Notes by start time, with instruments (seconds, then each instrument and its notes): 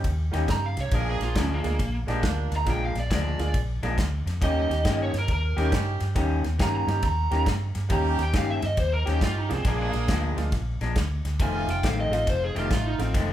0.04 fingered electric bass D#2, muted clean electric guitar stroke, kick, ride
0.31 fingered electric bass D#2, clean electric guitar D#3 A#3 C#4 G4, upright piano G3 A#3 C#4 D#4 G4, snare, ride
0.48 lead electric guitar A#5, muted clean electric guitar stroke, kick, snare, ride
0.66 lead electric guitar F5
0.77 fingered electric bass C2, lead electric guitar C#5, muted clean electric guitar stroke, snare, ride
0.91 fingered electric bass A#1, clean electric guitar A#2 F3 G#3 D4, horn section A#3 D4 G#4, lead electric guitar A#4, kick, snare, ride
1.10 lead electric guitar G#4
1.20 fingered electric bass A#1, muted clean electric guitar stroke, snare, ride
1.24 lead electric guitar F4
1.35 fingered electric bass D2, clean electric guitar A#2 F3 G#3 D4, kick, snare, ride
1.39 lead electric guitar C#4
1.54 lead electric guitar A#3
1.63 fingered electric bass D2, upright piano G#3 A#3 D4 F4 G#4, muted clean electric guitar stroke, snare, ride
1.79 fingered electric bass A#1, muted clean electric guitar stroke, kick, ride
2.07 fingered electric bass A#1, clean electric guitar A#2 F3 G#3 D4, upright piano G#3 A#3 D4 F4 G4, horn section A#3 D4, snare, ride
2.23 fingered electric bass D2, muted clean electric guitar stroke, kick, snare, ride
2.51 fingered electric bass D2, muted clean electric guitar stroke, snare, ride
2.56 lead electric guitar A#5
2.65 fingered electric bass A#1, clean electric guitar A#2 F3 G#3 D4, upright piano G#3 A#3 D4 F4 G#4, kick, snare, ride
2.70 lead electric guitar G5
2.85 lead electric guitar F5
2.95 fingered electric bass A#1, muted clean electric guitar stroke, snare, ride
3.00 lead electric guitar D5
3.10 fingered electric bass D2, clean electric guitar A#2 F3 G#3 D4, kick, snare, ride
3.14 lead electric guitar D5
3.39 fingered electric bass D2, upright piano G#3 A#3 D4 F4 G#4, muted clean electric guitar stroke, snare, ride
3.54 fingered electric bass A#1, muted clean electric guitar stroke, kick, ride
3.83 fingered electric bass A#1, clean electric guitar A#2 F3 G#3 D4, upright piano G#3 A#3 D4 F4 A#4, snare, ride
3.97 fingered electric bass D2, muted clean electric guitar stroke, kick, snare, ride
4.26 fingered electric bass F2, muted clean electric guitar stroke, snare, ride
4.41 fingered electric bass D#2, clean electric guitar D#3 A#3 C#4 G4, upright piano G3 A#3 C#4 D#4 G4, horn section C#4 D#4 G4, lead electric guitar D#5, kick, snare, ride
4.69 fingered electric bass D#2, muted clean electric guitar stroke, snare, ride
4.84 fingered electric bass G2, clean electric guitar D#3 A#3 C#4 G4, kick, snare, ride
5.03 lead electric guitar C#5
5.13 fingered electric bass G2, muted clean electric guitar stroke, snare, ride
5.18 lead electric guitar A#4
5.28 fingered electric bass D#2, muted clean electric guitar stroke, kick, ride
5.33 lead electric guitar A#4
5.57 fingered electric bass D#2, clean electric guitar D#3 A#3 C#4 G4, upright piano G3 A#3 C#4 D#4 G4, horn section C#4 D#4 G4, snare, ride
5.72 fingered electric bass G2, muted clean electric guitar stroke, kick, snare, ride
6.00 fingered electric bass G2, muted clean electric guitar stroke, snare, ride
6.15 fingered electric bass D#2, clean electric guitar D#3 A#3 C#4 G4, upright piano G3 A#3 C#4 D#4 G4, kick, snare, ride
6.44 fingered electric bass D#2, muted clean electric guitar stroke, snare, ride
6.59 fingered electric bass G2, clean electric guitar D#3 A#3 C#4 G4, lead electric guitar A#5, kick, snare, ride
6.76 lead electric guitar A#5
6.87 fingered electric bass G2, upright piano G3 A#3 C#4 D#4 G4, muted clean electric guitar stroke, snare, ride
7.02 fingered electric bass D#2, lead electric guitar A#5, muted clean electric guitar stroke, kick, snare, ride
7.31 fingered electric bass D#2, clean electric guitar D#3 A#3 C#4 G4, upright piano G3 A#3 C#4 D#4 A#4, snare, ride
7.46 fingered electric bass G2, muted clean electric guitar stroke, kick, snare, ride
7.75 fingered electric bass G2, muted clean electric guitar stroke, snare, ride
7.89 fingered electric bass D#2, clean electric guitar D#3 A#3 C#4 G4, upright piano G3 A#3 C#4 D#4 G4, horn section C#4 D#4 G4, kick, ride
7.93 lead electric guitar A#5
8.19 fingered electric bass D#2, muted clean electric guitar stroke, snare, ride
8.23 lead electric guitar G5
8.33 fingered electric bass G2, clean electric guitar D#3 A#3 C#4 G4, kick, snare, ride
8.37 lead electric guitar F5
8.50 lead electric guitar E5
8.62 fingered electric bass G2, lead electric guitar D#5, muted clean electric guitar stroke, snare, ride
8.77 fingered electric bass D#2, lead electric guitar C5, muted clean electric guitar stroke, kick, ride
8.93 lead electric guitar A#4
9.06 fingered electric bass D#2, clean electric guitar D#3 A#3 C#4 G4, horn section C#4 D#4 G4, lead electric guitar G4, snare, ride
9.21 fingered electric bass G2, lead electric guitar F4, muted clean electric guitar stroke, kick, snare, ride
9.38 lead electric guitar D#4
9.49 fingered electric bass C2, upright piano F3 G#3 A#3 D4 G#4, lead electric guitar C4, muted clean electric guitar stroke, snare, ride
9.65 fingered electric bass A#1, clean electric guitar A#2 F3 G#3 D4, horn section A#3 D4 G#4, lead electric guitar A#3, kick, snare, ride
9.81 lead electric guitar A#3
9.93 fingered electric bass A#1, muted clean electric guitar stroke, snare, ride
10.08 fingered electric bass D2, clean electric guitar A#2 F3 G#3 D4, kick, snare, ride
10.37 fingered electric bass D2, upright piano F3 G#3 A#3 D4 F4, muted clean electric guitar stroke, snare, ride
10.52 fingered electric bass A#1, muted clean electric guitar stroke, kick, snare, ride
10.81 fingered electric bass A#1, clean electric guitar A#2 F3 G#3 D4, snare, ride
10.96 fingered electric bass D2, muted clean electric guitar stroke, kick, snare, ride
11.25 fingered electric bass D2, muted clean electric guitar stroke, snare, ride
11.39 fingered electric bass F1, clean electric guitar F2 D#3 A3 C4, horn section A3 D#4 F4, lead electric guitar G#5, kick, ride
11.68 fingered electric bass F1, lead electric guitar G5, muted clean electric guitar stroke, snare, ride
11.83 fingered electric bass A1, clean electric guitar F2 D#3 A3 C4, lead electric guitar F5, kick, snare, ride
12.00 lead electric guitar D#5
12.10 fingered electric bass A1, upright piano F3 A3 C4 D#4 F4, lead electric guitar D#5, muted clean electric guitar stroke, snare, ride
12.27 fingered electric bass F1, lead electric guitar C5, muted clean electric guitar stroke, kick, snare, ride
12.44 lead electric guitar G#4
12.55 fingered electric bass F1, clean electric guitar F2 D#3 A3 C4, horn section A3 D#4 F4, lead electric guitar G4, snare, ride
12.71 fingered electric bass A1, lead electric guitar F4, muted clean electric guitar stroke, kick, snare, ride
12.87 lead electric guitar D#4
12.98 fingered electric bass A1, upright piano F3 A3 C4 D#4 F4, lead electric guitar C4, muted clean electric guitar stroke, snare, ride
13.14 fingered electric bass F1, clean electric guitar F2 D#3 A3 C4, lead electric guitar G#3, kick, snare, ride